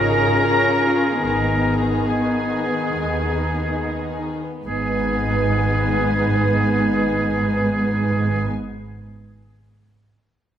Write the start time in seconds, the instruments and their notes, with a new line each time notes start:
Already playing: double bass section G#1, viola section C#3 C#4, french horn section C#4 F4, violin section G#4 A#5, flute section A#4, oboe A#4
0.03 violin section D#4, cello section D#4
0.22 violin section C#4
0.43 violin section G#3, cello section C#4
0.62 violin section C#4
0.81 violin section D#4, cello section F4
1.01 violin section C#4
1.22 double bass section G#1, viola section D#3 B3, violin section G#3 A#5, french horn section B3 D#4, cello section D#4, flute section A#4, oboe A#4
1.42 violin section B3
1.62 violin section D#4
1.82 violin section B3
2.04 violin section G#3 G#5, flute section G#4, oboe G#4
2.25 violin section B3
2.46 violin section D#4
2.67 violin section B3
2.90 double bass section D#2, violin section G#3
3.11 violin section B3
3.33 violin section D#4
3.56 violin section B3
3.79 violin section G#3
4.00 violin section B3
4.22 violin section D#4
4.43 violin section B3
4.65 double bass section G#1, cello section G#2, viola section G#3 B3, violin section B3 D#4 G#5, french horn section B3 D#4, oboe G#4, flute section B4